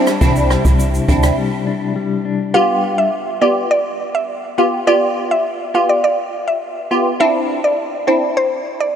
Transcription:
0.00 0.50 G3 medium
0.00 0.13 C4 medium
0.00 0.13 D4 medium
0.00 1.08 D4 medium
0.00 0.13 E4 medium
0.00 0.78 E4 medium
0.07 cross-stick medium
0.07 shaker medium
0.21 0.57 C2 loud
0.21 2.54 C3 medium
0.21 1.02 C4 medium
0.21 1.02 D4 medium
0.21 1.02 E4 loud
0.21 kick loud
0.21 shaker medium
0.36 shaker medium
0.50 1.37 G3 medium
0.50 cross-stick medium
0.50 closed hi-hat medium
0.50 shaker medium
0.65 1.00 C2 medium
0.65 kick medium
0.65 shaker medium
0.79 2.60 E4 medium
0.79 shaker medium
0.94 shaker soft
0.94 shaker medium
1.08 1.32 D2 medium
1.08 1.35 C4 medium
1.08 1.66 D4 medium
1.08 1.35 D4 medium
1.08 1.36 E4 medium
1.08 kick medium
1.08 closed hi-hat medium
1.08 shaker medium
1.23 cross-stick loud
1.23 shaker medium
1.38 1.96 G3 medium
1.67 2.25 D4 medium
1.96 3.10 G3 medium
2.25 3.10 D4 medium
2.54 3.35 B3 loud
2.54 3.35 F4 medium
2.54 3.35 G4 loud
2.54 2.75 F5 loud
2.98 3.08 E5 medium
3.41 3.68 B3 medium
3.41 3.68 F4 medium
3.41 3.69 G4 medium
3.41 3.52 D5 medium
3.71 3.81 D5 medium
4.15 4.25 E5 medium
4.58 4.79 B3 medium
4.58 4.79 F4 medium
4.58 4.79 G4 medium
4.58 4.68 F5 medium
4.87 5.68 B3 loud
4.87 5.68 F4 medium
4.87 5.68 G4 loud
4.87 5.08 D5 loud
5.31 5.41 E5 medium
5.74 6.01 B3 medium
5.74 6.01 F4 medium
5.74 6.02 G4 medium
5.74 5.85 F5 medium
5.89 6.00 D5 medium
6.04 6.14 D5 medium
6.48 6.58 E5 medium
6.91 7.12 B3 medium
6.91 7.12 F4 medium
6.91 7.12 G4 medium
7.20 8.00 C4 loud
7.20 8.01 D4 medium
7.20 8.01 E4 loud
7.20 7.41 E5 loud
7.64 7.74 D5 medium
8.07 8.34 C4 medium
8.07 8.34 D4 medium
8.07 8.35 E4 medium
8.07 8.18 C5 medium
8.37 8.47 C5 loud
8.80 8.91 D5 medium

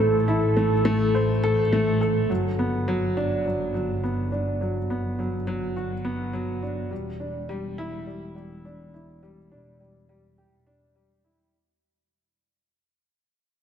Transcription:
0.00 2.27 A1 medium
0.00 0.57 A3 loud
0.00 0.28 E4 medium
0.00 1.44 A4 loud
0.00 1.72 A4 loud
0.28 0.55 E4 medium
0.57 0.73 A3 medium
0.85 1.13 A3 loud
1.14 1.31 C5 medium
1.44 1.60 A4 loud
1.73 2.00 A3 loud
2.01 2.29 A4 medium
2.30 6.89 G1 medium
2.30 2.46 F#3 medium
2.59 2.86 B3 medium
2.88 3.15 F#3 loud
3.17 3.44 D4 medium
3.46 3.73 F#3 medium
3.74 4.02 F#3 medium
4.03 4.31 B3 medium
4.32 4.59 D4 medium
4.61 4.77 F#3 medium
4.90 5.17 B3 medium
5.19 5.35 F#3 medium
5.47 5.75 F#3 loud
5.76 5.93 F#4 medium
6.05 6.32 B3 medium
6.33 6.61 F#3 medium
6.63 6.90 D4 medium
6.91 11.50 E1 medium
6.91 7.08 G3 medium
7.20 7.48 D4 medium
7.49 7.77 G3 medium
7.78 8.06 E4 medium
8.07 8.34 G3 medium
8.36 8.63 G3 medium
8.65 8.92 D4 medium
8.94 9.21 E4 medium
9.23 9.39 G3 medium
9.52 9.79 D4 medium
9.80 9.97 G3 medium
10.09 10.36 G3 medium
10.38 10.54 G4 medium
10.67 10.94 D4 medium
10.96 11.23 G3 medium
11.24 11.52 E4 medium

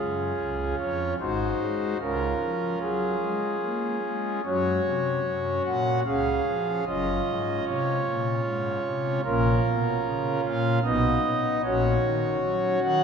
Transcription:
0.00 0.33 F#2 medium
0.00 1.16 C#4 soft
0.00 1.16 F4 soft
0.00 0.76 G#4 medium
0.39 0.74 C#2 medium
0.79 1.14 F2 medium
0.79 1.14 C#5 medium
1.20 1.54 G#1 medium
1.20 1.54 G#2 medium
1.20 1.98 D#4 soft
1.20 1.98 F#4 soft
1.20 1.98 C5 medium
1.61 1.94 G#3 medium
2.00 2.35 C#2 medium
2.00 2.34 C#3 medium
2.00 4.41 C#4 soft
2.00 4.42 F4 soft
2.00 2.79 A#4 medium
2.41 2.75 F3 medium
2.81 3.15 F#3 medium
2.81 4.41 G#4 medium
3.22 3.56 G#3 medium
3.62 3.97 A#3 medium
4.04 4.39 G#3 medium
4.45 4.80 F#2 medium
4.45 4.80 F#3 medium
4.45 6.02 C#4 soft
4.45 6.02 F#4 soft
4.45 5.63 C#5 loud
4.85 5.20 C3 medium
5.26 5.60 F#2 medium
5.66 6.00 A#2 medium
5.66 6.00 F#5 loud
6.06 6.41 C#2 medium
6.06 6.40 C#3 medium
6.06 6.84 C#4 soft
6.06 6.84 G#4 soft
6.06 6.84 F5 medium
6.46 6.80 F3 medium
6.87 7.21 F#1 medium
6.87 7.21 F#2 medium
6.87 9.21 C#4 soft
6.87 9.21 F4 soft
6.87 7.65 D#5 loud
7.27 7.61 G#2 medium
7.67 8.01 C3 medium
7.67 9.21 C#5 medium
8.06 8.40 A#2 medium
8.46 8.79 G#2 medium
8.85 9.19 C3 medium
9.24 9.59 A#1 medium
9.24 9.59 A#2 medium
9.24 10.80 C#4 soft
9.24 10.80 F4 medium
9.24 10.41 A#4 loud
9.65 9.99 B2 medium
10.05 10.39 C#3 medium
10.45 10.79 A#2 medium
10.45 10.79 F5 loud
10.84 11.18 B1 medium
10.84 11.18 B2 medium
10.84 11.22 B3 soft
10.84 11.61 D#4 medium
10.84 11.61 D#5 loud
11.24 11.58 B3 medium
11.64 11.98 A#1 medium
11.64 11.98 A#2 medium
11.64 13.04 C#4 medium
11.64 13.04 F#4 medium
11.64 12.80 C#5 loud
12.03 12.37 D#3 medium
12.44 12.78 F#3 medium
12.83 13.04 D#3 medium
12.83 13.04 F#5 loud

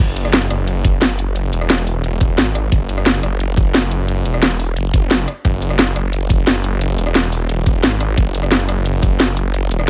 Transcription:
0.00 0.49 F#1 loud
0.16 closed hi-hat loud
0.25 cross-stick soft
0.33 snare loud
0.33 closed hi-hat medium
0.51 1.00 F#1 loud
0.51 cross-stick soft
0.51 closed hi-hat loud
0.68 closed hi-hat medium
0.85 kick loud
0.85 closed hi-hat loud
1.02 1.51 F#1 medium
1.02 snare loud
1.02 closed hi-hat medium
1.19 closed hi-hat loud
1.36 closed hi-hat medium
1.53 2.03 E1 loud
1.53 closed hi-hat loud
1.61 cross-stick soft
1.70 snare loud
1.70 closed hi-hat medium
1.87 open hi-hat medium
2.04 2.37 E1 medium
2.04 closed hi-hat medium
2.21 kick loud
2.21 closed hi-hat loud
2.38 2.71 G#1 loud
2.38 snare loud
2.38 closed hi-hat medium
2.55 cross-stick medium
2.55 closed hi-hat medium
2.72 3.22 F#1 loud
2.72 kick loud
2.72 closed hi-hat medium
2.89 closed hi-hat medium
2.98 cross-stick soft
3.06 snare loud
3.06 closed hi-hat medium
3.23 3.73 F#1 loud
3.23 cross-stick soft
3.23 closed hi-hat loud
3.40 closed hi-hat medium
3.57 kick loud
3.57 closed hi-hat medium
3.74 4.24 F#1 loud
3.74 snare loud
3.74 closed hi-hat medium
3.91 closed hi-hat medium
4.08 closed hi-hat medium
4.26 4.75 E1 medium
4.26 closed hi-hat medium
4.34 cross-stick soft
4.43 snare loud
4.43 closed hi-hat medium
4.60 open hi-hat medium
4.77 5.26 F#1 medium
4.77 closed hi-hat medium
4.94 kick loud
4.94 closed hi-hat medium
5.11 snare loud
5.11 closed hi-hat medium
5.28 cross-stick soft
5.28 closed hi-hat medium
5.45 5.95 F#1 loud
5.45 kick loud
5.45 closed hi-hat medium
5.62 closed hi-hat medium
5.70 cross-stick soft
5.79 snare loud
5.79 closed hi-hat medium
5.96 6.46 F#1 loud
5.96 cross-stick soft
5.96 closed hi-hat medium
6.13 closed hi-hat medium
6.30 kick loud
6.30 closed hi-hat medium
6.47 6.97 F#1 loud
6.47 snare loud
6.47 closed hi-hat medium
6.64 closed hi-hat medium
6.81 closed hi-hat medium
6.98 7.48 E1 loud
6.98 closed hi-hat medium
7.07 cross-stick soft
7.15 snare loud
7.15 closed hi-hat medium
7.32 open hi-hat medium
7.49 7.82 E1 medium
7.49 closed hi-hat medium
7.66 kick loud
7.66 closed hi-hat medium
7.83 8.16 G#1 loud
7.83 snare loud
7.83 closed hi-hat medium
8.00 cross-stick soft
8.00 closed hi-hat medium
8.18 8.67 F#1 loud
8.18 kick loud
8.18 closed hi-hat medium
8.35 closed hi-hat loud
8.43 cross-stick soft
8.52 snare loud
8.52 closed hi-hat medium
8.69 9.18 F#1 loud
8.69 cross-stick medium
8.69 closed hi-hat loud
8.86 closed hi-hat medium
9.03 kick loud
9.03 closed hi-hat loud
9.20 9.70 F#1 loud
9.20 snare loud
9.20 closed hi-hat medium
9.37 closed hi-hat loud
9.54 closed hi-hat medium
9.71 9.90 E1 loud
9.71 closed hi-hat loud
9.79 cross-stick soft

